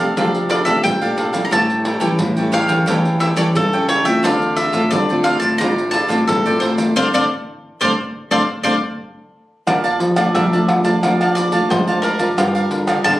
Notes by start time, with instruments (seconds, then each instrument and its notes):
Already playing: nylon-string guitar C3, cavaquinho F5, mandolin F5
0.00 nylon-string guitar D4 G4, cavaquinho A4 D5
0.16 nylon-string guitar C3 F3 A3 D4 G4, cavaquinho D4 A4 D5 F5, pandeiro, maracas, surdo
0.35 pandeiro, maracas
0.49 cavaquinho D4 A4 D5 F5, mandolin D5, pandeiro, maracas
0.65 nylon-string guitar C3 A3 D4 G4, cavaquinho D4 A4 D5 F5, mandolin E5, pandeiro, maracas, surdo
0.84 nylon-string guitar A#2 C3, mandolin G5, pandeiro, maracas, surdo
1.01 nylon-string guitar A3 D4 G4, cavaquinho A4 D5 F5, pandeiro, maracas, surdo
1.17 cavaquinho D4 A4 D5 F5, pandeiro
1.33 nylon-string guitar G3 C#4 E4, cavaquinho A4 D5 F5, pandeiro, maracas, surdo
1.45 mandolin A#5
1.51 nylon-string guitar A2, cavaquinho G4 A4 C#5 G5, mandolin A5, pandeiro, maracas, surdo
1.70 pandeiro, maracas
1.85 cavaquinho G4 A4 C#5 G5, pandeiro
2.00 nylon-string guitar E3 G3 C#4 E4, cavaquinho G4 A4 C#5 G5, pandeiro, maracas, surdo
2.19 nylon-string guitar A2 E3, pandeiro, maracas, surdo
2.37 nylon-string guitar G3 C#4 E4, cavaquinho A4 C#5 G5, pandeiro, maracas
2.52 cavaquinho G4 A4 C#5 G5, mandolin F5, pandeiro
2.68 nylon-string guitar E3 G3 C#4 E4, cavaquinho A4 C#5 G5, pandeiro, maracas, surdo
2.86 nylon-string guitar A2 E3 G3 C#4, cavaquinho G4 A4 C#5 G5, pandeiro, maracas, surdo
3.05 pandeiro, maracas
3.19 cavaquinho G4 A4 C#5 G5, mandolin E5, pandeiro
3.36 nylon-string guitar E3 G3 C#4 E4, cavaquinho G4 A4 C#5 G5, mandolin D5, pandeiro, maracas, surdo
3.55 nylon-string guitar C#3 E3, mandolin A4, pandeiro, maracas, surdo
3.73 nylon-string guitar G3 C#4 E4, cavaquinho A4 C#5 G5, pandeiro, maracas
3.88 cavaquinho G4 A4 C#5 G5, mandolin C#5, pandeiro
4.05 nylon-string guitar A3 C4 F4, cavaquinho A4 C#5 G5, mandolin E5, pandeiro, maracas, surdo
4.23 nylon-string guitar D3, cavaquinho F4 A4 C5 D5, mandolin F5, pandeiro, maracas, surdo
4.42 pandeiro, maracas
4.56 cavaquinho F4 A4 C5 D5, mandolin E5, pandeiro, maracas
4.73 nylon-string guitar A2 A3 C4 F4, cavaquinho F4 A4 C5 D5, pandeiro, maracas, surdo
4.91 nylon-string guitar A2 D3, mandolin D5, pandeiro, maracas, surdo
5.09 nylon-string guitar A3 C4 F4, cavaquinho A4 C5 D5, pandeiro, maracas
5.24 cavaquinho F4 A4 C5 D5, mandolin F5, pandeiro
5.40 nylon-string guitar A2, cavaquinho A4 C5 D5, mandolin A5, pandeiro, maracas, surdo
5.58 nylon-string guitar A2 D3 A3 C4 F4, cavaquinho F4 C5 D5, mandolin A#5, pandeiro, maracas, surdo
5.78 pandeiro, maracas
5.91 cavaquinho F4 A4 C5 D5, mandolin A5, pandeiro, maracas
6.08 nylon-string guitar A2 A3 C4 F4, cavaquinho F4 A4 C5 D5, pandeiro, maracas, surdo
6.27 nylon-string guitar A2, mandolin A4, pandeiro, maracas, surdo
6.46 nylon-string guitar A3 C4 F4, cavaquinho A4 C5 D5, pandeiro, maracas
6.60 cavaquinho F4 A4 C5 D5, mandolin C5, pandeiro
6.77 cavaquinho A4 C5 D5, pandeiro, maracas, surdo
6.96 nylon-string guitar D3 A3 C4 D4, cavaquinho A4 C5 D5, mandolin C5 D5 F5, surdo
7.13 nylon-string guitar D3 A3 C4 D4, cavaquinho A4 C5 D5, mandolin C5 D5 F5, surdo
7.81 nylon-string guitar D3 A3 C4 D4, cavaquinho A4 C5 D5, mandolin C5 D5 F5, surdo
8.31 nylon-string guitar D3 A3 C4 D4, cavaquinho A4 C5 D5, mandolin C5 D5 F5, surdo
8.63 nylon-string guitar D3 A3 C4 D4, cavaquinho A4 C5 D5, mandolin C5 D5 F5, surdo
9.67 nylon-string guitar A#2, cavaquinho A#4 D5 F5 A5, pandeiro, tamborim, maracas, surdo
9.84 cavaquinho D5 F5 A5, pandeiro, maracas
9.99 nylon-string guitar F3, muted cavaquinho stroke, pandeiro
10.16 nylon-string guitar A3 D4 F4, cavaquinho D5 F5 A5, pandeiro, tamborim, maracas, surdo
10.35 nylon-string guitar F3, cavaquinho A#4 D5 F5 A5, mandolin E5, pandeiro, tamborim, maracas, surdo
10.52 nylon-string guitar A3 D4 F4, cavaquinho D5 A5, pandeiro, maracas
10.69 pandeiro, tamborim
10.83 nylon-string guitar F3 A3 D4 F4, cavaquinho D5 F5 A5, pandeiro, maracas, surdo
11.01 nylon-string guitar A#2 F3 A3 D4 F4, cavaquinho A#4 D5 F5 A5, pandeiro, tamborim, maracas, surdo
11.21 cavaquinho D5 F5 A5, pandeiro, tamborim, maracas
11.35 mandolin D5, muted cavaquinho stroke, pandeiro, maracas
11.52 nylon-string guitar A3 D4 F4, cavaquinho D5 F5 A5, pandeiro, maracas, surdo
11.69 nylon-string guitar G#2 F3, mandolin C5, pandeiro, tamborim, maracas, surdo
11.87 nylon-string guitar A3 D4 F4, cavaquinho D5 F5 A5, pandeiro, maracas, surdo
12.02 mandolin A#4, cavaquinho A#4 D5 F5 A5, pandeiro
12.19 nylon-string guitar D4 F4 A#4, cavaquinho D5 F5 A5, pandeiro, maracas, surdo
12.37 nylon-string guitar G2 G3, cavaquinho G4 A#4 D5 F5, pandeiro, tamborim, maracas, surdo
12.55 cavaquinho A#4 D5 F5, pandeiro, maracas
12.70 nylon-string guitar D3 D4 F4 A#4, muted cavaquinho stroke, pandeiro
12.87 cavaquinho A#4 D5 F5, pandeiro, tamborim, maracas, surdo
13.04 nylon-string guitar D3, cavaquinho G4 A#4 D5 F5, mandolin A5, pandeiro, tamborim, maracas, surdo